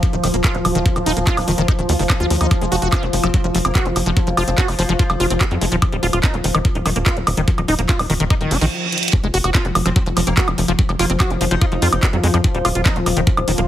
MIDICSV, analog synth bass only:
0, 0, Header, 1, 2, 480
1, 0, Start_track
1, 0, Tempo, 413793
1, 993, Time_signature, 4, 2, 24, 8
1, 15865, End_track
2, 0, Start_track
2, 0, Title_t, "Analog synth bass"
2, 0, Program_c, 0, 38
2, 153, Note_on_c, 0, 27, 91
2, 235, Note_off_c, 0, 27, 0
2, 273, Note_on_c, 0, 27, 102
2, 355, Note_off_c, 0, 27, 0
2, 393, Note_on_c, 0, 27, 93
2, 475, Note_off_c, 0, 27, 0
2, 633, Note_on_c, 0, 27, 85
2, 715, Note_off_c, 0, 27, 0
2, 753, Note_on_c, 0, 27, 95
2, 835, Note_off_c, 0, 27, 0
2, 873, Note_on_c, 0, 27, 91
2, 954, Note_off_c, 0, 27, 0
2, 1113, Note_on_c, 0, 27, 92
2, 1195, Note_off_c, 0, 27, 0
2, 1233, Note_on_c, 0, 27, 102
2, 1315, Note_off_c, 0, 27, 0
2, 1353, Note_on_c, 0, 27, 89
2, 1435, Note_off_c, 0, 27, 0
2, 1593, Note_on_c, 0, 27, 87
2, 1675, Note_off_c, 0, 27, 0
2, 1713, Note_on_c, 0, 27, 102
2, 1795, Note_off_c, 0, 27, 0
2, 1833, Note_on_c, 0, 27, 91
2, 1915, Note_off_c, 0, 27, 0
2, 2073, Note_on_c, 0, 27, 89
2, 2155, Note_off_c, 0, 27, 0
2, 2193, Note_on_c, 0, 39, 105
2, 2275, Note_off_c, 0, 39, 0
2, 2313, Note_on_c, 0, 29, 93
2, 2395, Note_off_c, 0, 29, 0
2, 2553, Note_on_c, 0, 39, 83
2, 2635, Note_off_c, 0, 39, 0
2, 2673, Note_on_c, 0, 39, 96
2, 2755, Note_off_c, 0, 39, 0
2, 2793, Note_on_c, 0, 39, 90
2, 2875, Note_off_c, 0, 39, 0
2, 3033, Note_on_c, 0, 29, 91
2, 3115, Note_off_c, 0, 29, 0
2, 3153, Note_on_c, 0, 29, 99
2, 3235, Note_off_c, 0, 29, 0
2, 3273, Note_on_c, 0, 29, 92
2, 3354, Note_off_c, 0, 29, 0
2, 3513, Note_on_c, 0, 29, 87
2, 3594, Note_off_c, 0, 29, 0
2, 3633, Note_on_c, 0, 29, 100
2, 3714, Note_off_c, 0, 29, 0
2, 3753, Note_on_c, 0, 29, 98
2, 3835, Note_off_c, 0, 29, 0
2, 3993, Note_on_c, 0, 29, 88
2, 4075, Note_off_c, 0, 29, 0
2, 4113, Note_on_c, 0, 29, 107
2, 4194, Note_off_c, 0, 29, 0
2, 4233, Note_on_c, 0, 29, 95
2, 4315, Note_off_c, 0, 29, 0
2, 4473, Note_on_c, 0, 29, 84
2, 4555, Note_off_c, 0, 29, 0
2, 4592, Note_on_c, 0, 29, 99
2, 4674, Note_off_c, 0, 29, 0
2, 4713, Note_on_c, 0, 29, 92
2, 4794, Note_off_c, 0, 29, 0
2, 4953, Note_on_c, 0, 29, 89
2, 5034, Note_off_c, 0, 29, 0
2, 5073, Note_on_c, 0, 29, 101
2, 5155, Note_off_c, 0, 29, 0
2, 5193, Note_on_c, 0, 29, 88
2, 5275, Note_off_c, 0, 29, 0
2, 5433, Note_on_c, 0, 29, 85
2, 5515, Note_off_c, 0, 29, 0
2, 5553, Note_on_c, 0, 29, 100
2, 5635, Note_off_c, 0, 29, 0
2, 5673, Note_on_c, 0, 29, 93
2, 5755, Note_off_c, 0, 29, 0
2, 5913, Note_on_c, 0, 29, 85
2, 5995, Note_off_c, 0, 29, 0
2, 6033, Note_on_c, 0, 29, 109
2, 6115, Note_off_c, 0, 29, 0
2, 6153, Note_on_c, 0, 29, 95
2, 6235, Note_off_c, 0, 29, 0
2, 6393, Note_on_c, 0, 41, 85
2, 6475, Note_off_c, 0, 41, 0
2, 6513, Note_on_c, 0, 29, 102
2, 6594, Note_off_c, 0, 29, 0
2, 6633, Note_on_c, 0, 27, 95
2, 6714, Note_off_c, 0, 27, 0
2, 6873, Note_on_c, 0, 27, 93
2, 6954, Note_off_c, 0, 27, 0
2, 6993, Note_on_c, 0, 27, 102
2, 7074, Note_off_c, 0, 27, 0
2, 7113, Note_on_c, 0, 27, 89
2, 7194, Note_off_c, 0, 27, 0
2, 7353, Note_on_c, 0, 27, 84
2, 7435, Note_off_c, 0, 27, 0
2, 7473, Note_on_c, 0, 27, 100
2, 7555, Note_off_c, 0, 27, 0
2, 7593, Note_on_c, 0, 27, 97
2, 7675, Note_off_c, 0, 27, 0
2, 7833, Note_on_c, 0, 27, 87
2, 7915, Note_off_c, 0, 27, 0
2, 7953, Note_on_c, 0, 27, 106
2, 8035, Note_off_c, 0, 27, 0
2, 8073, Note_on_c, 0, 27, 90
2, 8155, Note_off_c, 0, 27, 0
2, 8313, Note_on_c, 0, 27, 85
2, 8395, Note_off_c, 0, 27, 0
2, 8433, Note_on_c, 0, 27, 103
2, 8515, Note_off_c, 0, 27, 0
2, 8553, Note_on_c, 0, 27, 90
2, 8635, Note_off_c, 0, 27, 0
2, 8793, Note_on_c, 0, 27, 93
2, 8875, Note_off_c, 0, 27, 0
2, 8913, Note_on_c, 0, 27, 104
2, 8995, Note_off_c, 0, 27, 0
2, 9033, Note_on_c, 0, 27, 87
2, 9115, Note_off_c, 0, 27, 0
2, 9273, Note_on_c, 0, 27, 89
2, 9355, Note_off_c, 0, 27, 0
2, 9393, Note_on_c, 0, 27, 99
2, 9475, Note_off_c, 0, 27, 0
2, 9513, Note_on_c, 0, 27, 97
2, 9595, Note_off_c, 0, 27, 0
2, 9753, Note_on_c, 0, 27, 84
2, 9834, Note_off_c, 0, 27, 0
2, 9873, Note_on_c, 0, 29, 107
2, 9955, Note_off_c, 0, 29, 0
2, 9993, Note_on_c, 0, 34, 96
2, 10075, Note_off_c, 0, 34, 0
2, 10713, Note_on_c, 0, 29, 94
2, 10795, Note_off_c, 0, 29, 0
2, 10833, Note_on_c, 0, 29, 100
2, 10915, Note_off_c, 0, 29, 0
2, 10953, Note_on_c, 0, 29, 86
2, 11035, Note_off_c, 0, 29, 0
2, 11193, Note_on_c, 0, 29, 84
2, 11275, Note_off_c, 0, 29, 0
2, 11313, Note_on_c, 0, 29, 100
2, 11395, Note_off_c, 0, 29, 0
2, 11433, Note_on_c, 0, 29, 94
2, 11515, Note_off_c, 0, 29, 0
2, 11674, Note_on_c, 0, 29, 89
2, 11755, Note_off_c, 0, 29, 0
2, 11793, Note_on_c, 0, 29, 109
2, 11875, Note_off_c, 0, 29, 0
2, 11913, Note_on_c, 0, 29, 95
2, 11995, Note_off_c, 0, 29, 0
2, 12153, Note_on_c, 0, 29, 83
2, 12235, Note_off_c, 0, 29, 0
2, 12273, Note_on_c, 0, 29, 103
2, 12355, Note_off_c, 0, 29, 0
2, 12393, Note_on_c, 0, 29, 93
2, 12475, Note_off_c, 0, 29, 0
2, 12633, Note_on_c, 0, 29, 92
2, 12715, Note_off_c, 0, 29, 0
2, 12753, Note_on_c, 0, 29, 102
2, 12835, Note_off_c, 0, 29, 0
2, 12873, Note_on_c, 0, 29, 84
2, 12955, Note_off_c, 0, 29, 0
2, 13113, Note_on_c, 0, 29, 89
2, 13195, Note_off_c, 0, 29, 0
2, 13233, Note_on_c, 0, 29, 100
2, 13315, Note_off_c, 0, 29, 0
2, 13353, Note_on_c, 0, 29, 96
2, 13435, Note_off_c, 0, 29, 0
2, 13593, Note_on_c, 0, 29, 89
2, 13675, Note_off_c, 0, 29, 0
2, 13713, Note_on_c, 0, 41, 109
2, 13795, Note_off_c, 0, 41, 0
2, 13833, Note_on_c, 0, 30, 91
2, 13915, Note_off_c, 0, 30, 0
2, 14073, Note_on_c, 0, 41, 81
2, 14155, Note_off_c, 0, 41, 0
2, 14193, Note_on_c, 0, 41, 100
2, 14275, Note_off_c, 0, 41, 0
2, 14313, Note_on_c, 0, 41, 94
2, 14395, Note_off_c, 0, 41, 0
2, 14553, Note_on_c, 0, 27, 94
2, 14635, Note_off_c, 0, 27, 0
2, 14673, Note_on_c, 0, 27, 102
2, 14755, Note_off_c, 0, 27, 0
2, 14793, Note_on_c, 0, 27, 89
2, 14875, Note_off_c, 0, 27, 0
2, 15033, Note_on_c, 0, 27, 87
2, 15115, Note_off_c, 0, 27, 0
2, 15153, Note_on_c, 0, 27, 103
2, 15235, Note_off_c, 0, 27, 0
2, 15273, Note_on_c, 0, 27, 96
2, 15355, Note_off_c, 0, 27, 0
2, 15513, Note_on_c, 0, 27, 91
2, 15594, Note_off_c, 0, 27, 0
2, 15633, Note_on_c, 0, 27, 108
2, 15715, Note_off_c, 0, 27, 0
2, 15753, Note_on_c, 0, 27, 94
2, 15835, Note_off_c, 0, 27, 0
2, 15865, End_track
0, 0, End_of_file